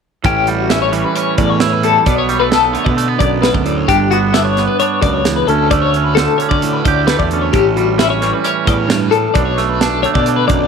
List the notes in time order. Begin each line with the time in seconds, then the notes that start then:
0.24 A1 A2 C#4 G4, kick, closed hi-hat
0.47 G3 F#4, closed hi-hat
0.69 C#4 E4, snare, closed hi-hat
0.82 C#5
0.92 E3 G3, closed hi-hat
1.05 B4
1.16 C#4 C#5, closed hi-hat
1.38 E2 A2 D5, kick, closed hi-hat
1.50 C#5
1.60 E4, snare, closed hi-hat
1.72 B4
1.83 G3 A4, closed hi-hat
2.06 B1 B2 B3 D5, kick, closed hi-hat
2.18 C#5
2.29 G3, closed hi-hat
2.40 A3 B4
2.51 B3 A4, snare, closed hi-hat
2.73 D3 A3 C#5, closed hi-hat
2.85 B2 D5, kick
2.97 A3, closed hi-hat
3.08 B3 B4
3.19 B1 F#2 D5, kick, closed hi-hat
3.42 B2 B4, snare, closed hi-hat
3.54 D2 D5, kick
3.66 A2, closed hi-hat
3.77 C#5
3.88 G1 G2 D4 G4, kick, closed hi-hat
4.11 B3 F#4, closed hi-hat
4.34 D4 E4, snare, closed hi-hat
4.45 C#5
4.57 B3, snare, closed hi-hat
4.67 B4
4.80 D4 C#5, closed hi-hat
5.02 C#2 F#2 D5, kick, closed hi-hat
5.14 C#5
5.24 E2, snare, closed hi-hat
5.36 B4
5.47 D2 C#4 A4, closed hi-hat
5.71 A3 D5, kick, closed hi-hat
5.82 C#5
5.94 C#4, closed hi-hat
6.04 B4
6.15 D3 A4, snare, closed hi-hat
6.19 A3
6.38 C#4 C#5, closed hi-hat
6.49 D3 D5, kick
6.62 A2, closed hi-hat
6.73 B4
6.85 D2 G4 D5, kick, closed hi-hat
7.07 A3 B4, snare, closed hi-hat
7.19 E2 D5, kick
7.31 D2 C#4, closed hi-hat
7.42 C#5
7.53 A1 A2 C#4 G4, kick, closed hi-hat
7.76 G3 F#4, closed hi-hat
7.98 C#4 E4, snare, closed hi-hat
8.10 C#5
8.22 E3 G3, snare, closed hi-hat
8.34 B4
8.44 C#4 C#5, closed hi-hat
8.66 E2 A2 D5, kick, closed hi-hat
8.78 C#5
8.88 G2, snare, closed hi-hat
9.00 B4
9.11 A2 A4, closed hi-hat
9.34 B1 B2 D4 D5, kick, closed hi-hat
9.45 C#5
9.58 A3, snare, closed hi-hat
9.70 B4
9.80 D4 A4, snare, closed hi-hat
10.03 D3 A3 C#5, closed hi-hat
10.14 B2 D5, kick
10.26 D4, closed hi-hat
10.36 B4
10.47 B1 F#2 D5, kick, closed hi-hat